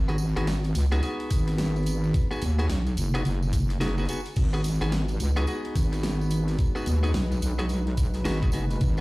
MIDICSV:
0, 0, Header, 1, 5, 480
1, 0, Start_track
1, 0, Key_signature, 5, "minor"
1, 0, Tempo, 555556
1, 1852, Time_signature, 4, 2, 24, 8
1, 7781, End_track
2, 0, Start_track
2, 0, Title_t, "Analog synth pad"
2, 0, Program_c, 0, 89
2, 3775, Note_on_c, 0, 71, 86
2, 3776, Note_on_c, 0, 66, 75
2, 3777, Note_on_c, 0, 56, 76
2, 3779, Note_on_c, 0, 63, 75
2, 7781, Note_off_c, 0, 56, 0
2, 7781, Note_off_c, 0, 63, 0
2, 7781, Note_off_c, 0, 66, 0
2, 7781, Note_off_c, 0, 71, 0
2, 7781, End_track
3, 0, Start_track
3, 0, Title_t, "Clean electric guitar"
3, 0, Program_c, 1, 27
3, 72, Note_on_c, 1, 59, 77
3, 78, Note_on_c, 1, 68, 78
3, 81, Note_on_c, 1, 66, 65
3, 87, Note_on_c, 1, 63, 61
3, 137, Note_off_c, 1, 59, 0
3, 137, Note_off_c, 1, 63, 0
3, 137, Note_off_c, 1, 66, 0
3, 137, Note_off_c, 1, 68, 0
3, 314, Note_on_c, 1, 59, 97
3, 316, Note_on_c, 1, 68, 95
3, 320, Note_on_c, 1, 66, 84
3, 323, Note_on_c, 1, 63, 81
3, 412, Note_off_c, 1, 59, 0
3, 412, Note_off_c, 1, 63, 0
3, 412, Note_off_c, 1, 66, 0
3, 412, Note_off_c, 1, 68, 0
3, 793, Note_on_c, 1, 59, 97
3, 797, Note_on_c, 1, 68, 101
3, 800, Note_on_c, 1, 66, 87
3, 804, Note_on_c, 1, 63, 81
3, 868, Note_off_c, 1, 59, 0
3, 868, Note_off_c, 1, 63, 0
3, 868, Note_off_c, 1, 66, 0
3, 868, Note_off_c, 1, 68, 0
3, 883, Note_on_c, 1, 63, 76
3, 887, Note_on_c, 1, 66, 70
3, 892, Note_on_c, 1, 68, 85
3, 898, Note_on_c, 1, 59, 74
3, 1963, Note_off_c, 1, 59, 0
3, 1963, Note_off_c, 1, 63, 0
3, 1963, Note_off_c, 1, 66, 0
3, 1963, Note_off_c, 1, 68, 0
3, 1994, Note_on_c, 1, 59, 81
3, 1998, Note_on_c, 1, 68, 89
3, 2002, Note_on_c, 1, 66, 74
3, 2006, Note_on_c, 1, 63, 63
3, 2093, Note_off_c, 1, 59, 0
3, 2093, Note_off_c, 1, 63, 0
3, 2093, Note_off_c, 1, 66, 0
3, 2093, Note_off_c, 1, 68, 0
3, 2234, Note_on_c, 1, 59, 83
3, 2239, Note_on_c, 1, 68, 84
3, 2244, Note_on_c, 1, 66, 71
3, 2250, Note_on_c, 1, 63, 62
3, 2297, Note_off_c, 1, 59, 0
3, 2297, Note_off_c, 1, 68, 0
3, 2298, Note_off_c, 1, 63, 0
3, 2298, Note_off_c, 1, 66, 0
3, 2714, Note_on_c, 1, 59, 83
3, 2720, Note_on_c, 1, 68, 89
3, 2725, Note_on_c, 1, 66, 72
3, 2727, Note_on_c, 1, 63, 74
3, 2778, Note_off_c, 1, 59, 0
3, 2778, Note_off_c, 1, 63, 0
3, 2778, Note_off_c, 1, 66, 0
3, 2778, Note_off_c, 1, 68, 0
3, 3287, Note_on_c, 1, 63, 84
3, 3291, Note_on_c, 1, 66, 85
3, 3295, Note_on_c, 1, 68, 97
3, 3300, Note_on_c, 1, 59, 80
3, 3404, Note_off_c, 1, 66, 0
3, 3405, Note_off_c, 1, 59, 0
3, 3405, Note_off_c, 1, 63, 0
3, 3405, Note_off_c, 1, 68, 0
3, 3438, Note_on_c, 1, 59, 74
3, 3442, Note_on_c, 1, 68, 72
3, 3446, Note_on_c, 1, 66, 66
3, 3453, Note_on_c, 1, 63, 63
3, 3499, Note_off_c, 1, 59, 0
3, 3499, Note_off_c, 1, 63, 0
3, 3499, Note_off_c, 1, 66, 0
3, 3499, Note_off_c, 1, 68, 0
3, 3532, Note_on_c, 1, 59, 75
3, 3536, Note_on_c, 1, 68, 76
3, 3540, Note_on_c, 1, 66, 59
3, 3544, Note_on_c, 1, 63, 54
3, 3628, Note_off_c, 1, 59, 0
3, 3628, Note_off_c, 1, 63, 0
3, 3628, Note_off_c, 1, 66, 0
3, 3628, Note_off_c, 1, 68, 0
3, 3916, Note_on_c, 1, 59, 81
3, 3922, Note_on_c, 1, 68, 78
3, 3925, Note_on_c, 1, 66, 62
3, 3932, Note_on_c, 1, 63, 58
3, 3979, Note_off_c, 1, 59, 0
3, 3979, Note_off_c, 1, 63, 0
3, 3979, Note_off_c, 1, 66, 0
3, 3979, Note_off_c, 1, 68, 0
3, 4157, Note_on_c, 1, 59, 92
3, 4161, Note_on_c, 1, 68, 105
3, 4163, Note_on_c, 1, 66, 81
3, 4166, Note_on_c, 1, 63, 74
3, 4254, Note_off_c, 1, 59, 0
3, 4254, Note_off_c, 1, 63, 0
3, 4254, Note_off_c, 1, 66, 0
3, 4255, Note_off_c, 1, 68, 0
3, 4634, Note_on_c, 1, 59, 101
3, 4639, Note_on_c, 1, 68, 105
3, 4641, Note_on_c, 1, 66, 81
3, 4644, Note_on_c, 1, 63, 84
3, 4709, Note_off_c, 1, 59, 0
3, 4709, Note_off_c, 1, 63, 0
3, 4709, Note_off_c, 1, 66, 0
3, 4709, Note_off_c, 1, 68, 0
3, 4729, Note_on_c, 1, 63, 82
3, 4733, Note_on_c, 1, 66, 72
3, 4735, Note_on_c, 1, 68, 85
3, 4738, Note_on_c, 1, 59, 73
3, 5804, Note_off_c, 1, 59, 0
3, 5805, Note_off_c, 1, 63, 0
3, 5805, Note_off_c, 1, 66, 0
3, 5805, Note_off_c, 1, 68, 0
3, 5833, Note_on_c, 1, 59, 89
3, 5838, Note_on_c, 1, 68, 85
3, 5842, Note_on_c, 1, 66, 69
3, 5845, Note_on_c, 1, 63, 63
3, 5932, Note_off_c, 1, 59, 0
3, 5933, Note_off_c, 1, 63, 0
3, 5933, Note_off_c, 1, 66, 0
3, 5933, Note_off_c, 1, 68, 0
3, 6073, Note_on_c, 1, 59, 76
3, 6078, Note_on_c, 1, 68, 84
3, 6082, Note_on_c, 1, 66, 67
3, 6084, Note_on_c, 1, 63, 63
3, 6136, Note_off_c, 1, 63, 0
3, 6137, Note_off_c, 1, 59, 0
3, 6137, Note_off_c, 1, 66, 0
3, 6137, Note_off_c, 1, 68, 0
3, 6554, Note_on_c, 1, 59, 83
3, 6557, Note_on_c, 1, 68, 88
3, 6562, Note_on_c, 1, 66, 78
3, 6565, Note_on_c, 1, 63, 71
3, 6617, Note_off_c, 1, 63, 0
3, 6617, Note_off_c, 1, 68, 0
3, 6618, Note_off_c, 1, 59, 0
3, 6618, Note_off_c, 1, 66, 0
3, 7126, Note_on_c, 1, 63, 86
3, 7131, Note_on_c, 1, 66, 86
3, 7135, Note_on_c, 1, 68, 90
3, 7140, Note_on_c, 1, 59, 85
3, 7244, Note_off_c, 1, 59, 0
3, 7244, Note_off_c, 1, 66, 0
3, 7244, Note_off_c, 1, 68, 0
3, 7245, Note_off_c, 1, 63, 0
3, 7277, Note_on_c, 1, 59, 75
3, 7281, Note_on_c, 1, 68, 83
3, 7285, Note_on_c, 1, 66, 66
3, 7288, Note_on_c, 1, 63, 61
3, 7338, Note_off_c, 1, 63, 0
3, 7339, Note_off_c, 1, 59, 0
3, 7339, Note_off_c, 1, 66, 0
3, 7339, Note_off_c, 1, 68, 0
3, 7366, Note_on_c, 1, 59, 76
3, 7372, Note_on_c, 1, 68, 84
3, 7377, Note_on_c, 1, 66, 57
3, 7381, Note_on_c, 1, 63, 61
3, 7466, Note_off_c, 1, 59, 0
3, 7466, Note_off_c, 1, 63, 0
3, 7466, Note_off_c, 1, 66, 0
3, 7466, Note_off_c, 1, 68, 0
3, 7781, End_track
4, 0, Start_track
4, 0, Title_t, "Wobble bass"
4, 0, Program_c, 2, 39
4, 0, Note_on_c, 2, 32, 100
4, 297, Note_off_c, 2, 32, 0
4, 320, Note_on_c, 2, 32, 98
4, 637, Note_off_c, 2, 32, 0
4, 650, Note_on_c, 2, 37, 103
4, 877, Note_off_c, 2, 37, 0
4, 1132, Note_on_c, 2, 32, 101
4, 1838, Note_off_c, 2, 32, 0
4, 2092, Note_on_c, 2, 39, 96
4, 2318, Note_off_c, 2, 39, 0
4, 2331, Note_on_c, 2, 35, 97
4, 2557, Note_off_c, 2, 35, 0
4, 2574, Note_on_c, 2, 30, 99
4, 2799, Note_off_c, 2, 30, 0
4, 2811, Note_on_c, 2, 30, 103
4, 3517, Note_off_c, 2, 30, 0
4, 3772, Note_on_c, 2, 32, 95
4, 4137, Note_off_c, 2, 32, 0
4, 4160, Note_on_c, 2, 32, 98
4, 4477, Note_off_c, 2, 32, 0
4, 4493, Note_on_c, 2, 37, 98
4, 4718, Note_off_c, 2, 37, 0
4, 4972, Note_on_c, 2, 32, 98
4, 5678, Note_off_c, 2, 32, 0
4, 5933, Note_on_c, 2, 39, 103
4, 6158, Note_off_c, 2, 39, 0
4, 6171, Note_on_c, 2, 35, 93
4, 6397, Note_off_c, 2, 35, 0
4, 6411, Note_on_c, 2, 35, 97
4, 7117, Note_off_c, 2, 35, 0
4, 7130, Note_on_c, 2, 32, 97
4, 7357, Note_off_c, 2, 32, 0
4, 7371, Note_on_c, 2, 30, 94
4, 7597, Note_off_c, 2, 30, 0
4, 7612, Note_on_c, 2, 32, 101
4, 7781, Note_off_c, 2, 32, 0
4, 7781, End_track
5, 0, Start_track
5, 0, Title_t, "Drums"
5, 74, Note_on_c, 9, 54, 39
5, 79, Note_on_c, 9, 46, 22
5, 156, Note_off_c, 9, 54, 0
5, 156, Note_on_c, 9, 54, 89
5, 166, Note_off_c, 9, 46, 0
5, 243, Note_off_c, 9, 54, 0
5, 317, Note_on_c, 9, 46, 35
5, 317, Note_on_c, 9, 54, 36
5, 403, Note_off_c, 9, 54, 0
5, 404, Note_off_c, 9, 46, 0
5, 409, Note_on_c, 9, 38, 108
5, 409, Note_on_c, 9, 46, 45
5, 409, Note_on_c, 9, 54, 55
5, 495, Note_off_c, 9, 38, 0
5, 495, Note_off_c, 9, 46, 0
5, 496, Note_off_c, 9, 54, 0
5, 554, Note_on_c, 9, 54, 34
5, 559, Note_on_c, 9, 46, 23
5, 641, Note_off_c, 9, 54, 0
5, 645, Note_off_c, 9, 46, 0
5, 649, Note_on_c, 9, 46, 78
5, 649, Note_on_c, 9, 54, 81
5, 735, Note_off_c, 9, 46, 0
5, 735, Note_off_c, 9, 54, 0
5, 797, Note_on_c, 9, 46, 33
5, 801, Note_on_c, 9, 54, 34
5, 884, Note_off_c, 9, 46, 0
5, 888, Note_off_c, 9, 54, 0
5, 888, Note_on_c, 9, 46, 45
5, 889, Note_on_c, 9, 54, 46
5, 974, Note_off_c, 9, 46, 0
5, 976, Note_off_c, 9, 54, 0
5, 1036, Note_on_c, 9, 46, 24
5, 1123, Note_off_c, 9, 46, 0
5, 1128, Note_on_c, 9, 37, 57
5, 1128, Note_on_c, 9, 46, 85
5, 1128, Note_on_c, 9, 54, 88
5, 1131, Note_on_c, 9, 36, 103
5, 1214, Note_off_c, 9, 37, 0
5, 1214, Note_off_c, 9, 46, 0
5, 1214, Note_off_c, 9, 54, 0
5, 1218, Note_off_c, 9, 36, 0
5, 1276, Note_on_c, 9, 37, 43
5, 1276, Note_on_c, 9, 46, 34
5, 1283, Note_on_c, 9, 54, 35
5, 1362, Note_off_c, 9, 37, 0
5, 1362, Note_off_c, 9, 46, 0
5, 1368, Note_on_c, 9, 38, 112
5, 1368, Note_on_c, 9, 46, 46
5, 1369, Note_off_c, 9, 54, 0
5, 1377, Note_on_c, 9, 54, 44
5, 1455, Note_off_c, 9, 38, 0
5, 1455, Note_off_c, 9, 46, 0
5, 1463, Note_off_c, 9, 54, 0
5, 1520, Note_on_c, 9, 46, 10
5, 1523, Note_on_c, 9, 54, 37
5, 1581, Note_off_c, 9, 46, 0
5, 1581, Note_on_c, 9, 46, 14
5, 1609, Note_off_c, 9, 54, 0
5, 1611, Note_off_c, 9, 46, 0
5, 1611, Note_on_c, 9, 46, 76
5, 1612, Note_on_c, 9, 54, 84
5, 1697, Note_off_c, 9, 46, 0
5, 1699, Note_off_c, 9, 54, 0
5, 1762, Note_on_c, 9, 54, 41
5, 1848, Note_off_c, 9, 54, 0
5, 1851, Note_on_c, 9, 46, 46
5, 1852, Note_on_c, 9, 36, 121
5, 1853, Note_on_c, 9, 54, 53
5, 1937, Note_off_c, 9, 46, 0
5, 1938, Note_off_c, 9, 36, 0
5, 1939, Note_off_c, 9, 54, 0
5, 1998, Note_on_c, 9, 46, 21
5, 2009, Note_on_c, 9, 54, 38
5, 2084, Note_off_c, 9, 46, 0
5, 2088, Note_on_c, 9, 46, 76
5, 2092, Note_off_c, 9, 54, 0
5, 2092, Note_on_c, 9, 54, 83
5, 2174, Note_off_c, 9, 46, 0
5, 2178, Note_off_c, 9, 54, 0
5, 2239, Note_on_c, 9, 46, 33
5, 2242, Note_on_c, 9, 54, 38
5, 2326, Note_off_c, 9, 46, 0
5, 2328, Note_off_c, 9, 54, 0
5, 2329, Note_on_c, 9, 38, 118
5, 2329, Note_on_c, 9, 46, 46
5, 2332, Note_on_c, 9, 54, 52
5, 2415, Note_off_c, 9, 38, 0
5, 2415, Note_off_c, 9, 46, 0
5, 2418, Note_off_c, 9, 54, 0
5, 2476, Note_on_c, 9, 46, 23
5, 2476, Note_on_c, 9, 54, 36
5, 2562, Note_off_c, 9, 54, 0
5, 2563, Note_off_c, 9, 46, 0
5, 2567, Note_on_c, 9, 46, 77
5, 2572, Note_on_c, 9, 54, 96
5, 2654, Note_off_c, 9, 46, 0
5, 2659, Note_off_c, 9, 54, 0
5, 2719, Note_on_c, 9, 46, 32
5, 2721, Note_on_c, 9, 54, 39
5, 2805, Note_off_c, 9, 46, 0
5, 2807, Note_off_c, 9, 54, 0
5, 2809, Note_on_c, 9, 46, 42
5, 2821, Note_on_c, 9, 54, 47
5, 2896, Note_off_c, 9, 46, 0
5, 2907, Note_off_c, 9, 54, 0
5, 2959, Note_on_c, 9, 54, 38
5, 3045, Note_off_c, 9, 54, 0
5, 3049, Note_on_c, 9, 46, 79
5, 3052, Note_on_c, 9, 36, 104
5, 3054, Note_on_c, 9, 54, 93
5, 3135, Note_off_c, 9, 46, 0
5, 3139, Note_off_c, 9, 36, 0
5, 3140, Note_off_c, 9, 54, 0
5, 3199, Note_on_c, 9, 46, 34
5, 3205, Note_on_c, 9, 54, 41
5, 3285, Note_off_c, 9, 46, 0
5, 3291, Note_on_c, 9, 38, 123
5, 3291, Note_on_c, 9, 46, 44
5, 3292, Note_off_c, 9, 54, 0
5, 3297, Note_on_c, 9, 54, 54
5, 3377, Note_off_c, 9, 38, 0
5, 3377, Note_off_c, 9, 46, 0
5, 3384, Note_off_c, 9, 54, 0
5, 3438, Note_on_c, 9, 54, 36
5, 3439, Note_on_c, 9, 46, 10
5, 3502, Note_off_c, 9, 46, 0
5, 3502, Note_on_c, 9, 46, 14
5, 3524, Note_off_c, 9, 54, 0
5, 3531, Note_off_c, 9, 46, 0
5, 3531, Note_on_c, 9, 46, 77
5, 3532, Note_on_c, 9, 54, 93
5, 3580, Note_off_c, 9, 46, 0
5, 3580, Note_on_c, 9, 46, 16
5, 3618, Note_off_c, 9, 54, 0
5, 3666, Note_off_c, 9, 46, 0
5, 3675, Note_on_c, 9, 54, 41
5, 3679, Note_on_c, 9, 46, 32
5, 3762, Note_off_c, 9, 54, 0
5, 3765, Note_off_c, 9, 46, 0
5, 3767, Note_on_c, 9, 54, 55
5, 3771, Note_on_c, 9, 46, 44
5, 3771, Note_on_c, 9, 49, 83
5, 3773, Note_on_c, 9, 36, 127
5, 3853, Note_off_c, 9, 54, 0
5, 3857, Note_off_c, 9, 46, 0
5, 3857, Note_off_c, 9, 49, 0
5, 3859, Note_off_c, 9, 36, 0
5, 3920, Note_on_c, 9, 46, 22
5, 3921, Note_on_c, 9, 54, 39
5, 4006, Note_off_c, 9, 46, 0
5, 4007, Note_off_c, 9, 54, 0
5, 4009, Note_on_c, 9, 54, 98
5, 4011, Note_on_c, 9, 46, 74
5, 4096, Note_off_c, 9, 54, 0
5, 4098, Note_off_c, 9, 46, 0
5, 4160, Note_on_c, 9, 46, 33
5, 4165, Note_on_c, 9, 54, 36
5, 4247, Note_off_c, 9, 46, 0
5, 4251, Note_off_c, 9, 54, 0
5, 4252, Note_on_c, 9, 38, 119
5, 4252, Note_on_c, 9, 46, 43
5, 4253, Note_on_c, 9, 54, 52
5, 4338, Note_off_c, 9, 38, 0
5, 4338, Note_off_c, 9, 46, 0
5, 4339, Note_off_c, 9, 54, 0
5, 4392, Note_on_c, 9, 54, 40
5, 4400, Note_on_c, 9, 46, 22
5, 4479, Note_off_c, 9, 54, 0
5, 4486, Note_off_c, 9, 46, 0
5, 4492, Note_on_c, 9, 46, 71
5, 4494, Note_on_c, 9, 54, 82
5, 4579, Note_off_c, 9, 46, 0
5, 4580, Note_off_c, 9, 54, 0
5, 4636, Note_on_c, 9, 54, 36
5, 4638, Note_on_c, 9, 46, 32
5, 4722, Note_off_c, 9, 54, 0
5, 4725, Note_off_c, 9, 46, 0
5, 4726, Note_on_c, 9, 54, 47
5, 4732, Note_on_c, 9, 46, 41
5, 4813, Note_off_c, 9, 54, 0
5, 4818, Note_off_c, 9, 46, 0
5, 4881, Note_on_c, 9, 46, 23
5, 4967, Note_off_c, 9, 46, 0
5, 4972, Note_on_c, 9, 37, 57
5, 4972, Note_on_c, 9, 46, 75
5, 4973, Note_on_c, 9, 36, 106
5, 4980, Note_on_c, 9, 54, 96
5, 5058, Note_off_c, 9, 37, 0
5, 5058, Note_off_c, 9, 46, 0
5, 5059, Note_off_c, 9, 36, 0
5, 5066, Note_off_c, 9, 54, 0
5, 5121, Note_on_c, 9, 37, 42
5, 5121, Note_on_c, 9, 46, 34
5, 5130, Note_on_c, 9, 54, 40
5, 5207, Note_off_c, 9, 37, 0
5, 5207, Note_off_c, 9, 46, 0
5, 5213, Note_on_c, 9, 38, 127
5, 5213, Note_on_c, 9, 46, 43
5, 5216, Note_off_c, 9, 54, 0
5, 5216, Note_on_c, 9, 54, 49
5, 5299, Note_off_c, 9, 38, 0
5, 5299, Note_off_c, 9, 46, 0
5, 5303, Note_off_c, 9, 54, 0
5, 5368, Note_on_c, 9, 54, 39
5, 5448, Note_off_c, 9, 54, 0
5, 5448, Note_on_c, 9, 54, 90
5, 5452, Note_on_c, 9, 46, 73
5, 5535, Note_off_c, 9, 54, 0
5, 5538, Note_off_c, 9, 46, 0
5, 5599, Note_on_c, 9, 46, 32
5, 5606, Note_on_c, 9, 54, 43
5, 5685, Note_off_c, 9, 46, 0
5, 5690, Note_on_c, 9, 46, 42
5, 5692, Note_on_c, 9, 36, 127
5, 5693, Note_off_c, 9, 54, 0
5, 5702, Note_on_c, 9, 54, 51
5, 5776, Note_off_c, 9, 46, 0
5, 5779, Note_off_c, 9, 36, 0
5, 5788, Note_off_c, 9, 54, 0
5, 5839, Note_on_c, 9, 46, 21
5, 5848, Note_on_c, 9, 54, 36
5, 5925, Note_off_c, 9, 46, 0
5, 5929, Note_on_c, 9, 46, 72
5, 5934, Note_off_c, 9, 54, 0
5, 5939, Note_on_c, 9, 54, 99
5, 6015, Note_off_c, 9, 46, 0
5, 6025, Note_off_c, 9, 54, 0
5, 6081, Note_on_c, 9, 46, 29
5, 6089, Note_on_c, 9, 54, 37
5, 6168, Note_off_c, 9, 46, 0
5, 6170, Note_on_c, 9, 38, 122
5, 6170, Note_on_c, 9, 46, 41
5, 6175, Note_off_c, 9, 54, 0
5, 6188, Note_on_c, 9, 54, 48
5, 6257, Note_off_c, 9, 38, 0
5, 6257, Note_off_c, 9, 46, 0
5, 6275, Note_off_c, 9, 54, 0
5, 6321, Note_on_c, 9, 46, 21
5, 6322, Note_on_c, 9, 54, 37
5, 6407, Note_off_c, 9, 46, 0
5, 6408, Note_off_c, 9, 54, 0
5, 6413, Note_on_c, 9, 46, 72
5, 6414, Note_on_c, 9, 54, 97
5, 6499, Note_off_c, 9, 46, 0
5, 6501, Note_off_c, 9, 54, 0
5, 6557, Note_on_c, 9, 54, 42
5, 6561, Note_on_c, 9, 46, 31
5, 6644, Note_off_c, 9, 54, 0
5, 6645, Note_on_c, 9, 54, 56
5, 6648, Note_off_c, 9, 46, 0
5, 6650, Note_on_c, 9, 46, 43
5, 6731, Note_off_c, 9, 54, 0
5, 6737, Note_off_c, 9, 46, 0
5, 6799, Note_on_c, 9, 46, 22
5, 6886, Note_off_c, 9, 46, 0
5, 6889, Note_on_c, 9, 46, 75
5, 6891, Note_on_c, 9, 54, 98
5, 6892, Note_on_c, 9, 36, 105
5, 6975, Note_off_c, 9, 46, 0
5, 6977, Note_off_c, 9, 54, 0
5, 6979, Note_off_c, 9, 36, 0
5, 7030, Note_on_c, 9, 54, 41
5, 7038, Note_on_c, 9, 46, 33
5, 7117, Note_off_c, 9, 54, 0
5, 7124, Note_off_c, 9, 46, 0
5, 7129, Note_on_c, 9, 54, 55
5, 7130, Note_on_c, 9, 38, 127
5, 7130, Note_on_c, 9, 46, 41
5, 7215, Note_off_c, 9, 54, 0
5, 7216, Note_off_c, 9, 38, 0
5, 7216, Note_off_c, 9, 46, 0
5, 7278, Note_on_c, 9, 54, 39
5, 7281, Note_on_c, 9, 36, 112
5, 7282, Note_on_c, 9, 46, 22
5, 7360, Note_off_c, 9, 54, 0
5, 7360, Note_on_c, 9, 54, 98
5, 7367, Note_off_c, 9, 36, 0
5, 7368, Note_off_c, 9, 46, 0
5, 7373, Note_on_c, 9, 46, 71
5, 7447, Note_off_c, 9, 54, 0
5, 7459, Note_off_c, 9, 46, 0
5, 7521, Note_on_c, 9, 46, 32
5, 7524, Note_on_c, 9, 54, 39
5, 7608, Note_off_c, 9, 46, 0
5, 7610, Note_off_c, 9, 54, 0
5, 7611, Note_on_c, 9, 46, 42
5, 7613, Note_on_c, 9, 36, 127
5, 7613, Note_on_c, 9, 54, 55
5, 7697, Note_off_c, 9, 46, 0
5, 7700, Note_off_c, 9, 36, 0
5, 7700, Note_off_c, 9, 54, 0
5, 7752, Note_on_c, 9, 54, 42
5, 7781, Note_off_c, 9, 54, 0
5, 7781, End_track
0, 0, End_of_file